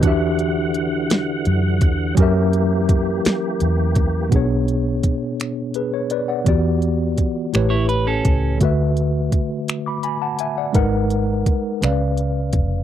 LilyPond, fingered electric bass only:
\new Staff \with { instrumentName = "Fingered electric bass" } { \clef bass \time 6/8 \key e \mixolydian \tempo 4. = 56 e,2 fis,8 e,8 | fis,4. r8 e,4 | b,,4 r2 | e,4 r8 a,,4 cis,8 |
d,4 r2 | gis,,4 r8 cis,4 eis,,8 | }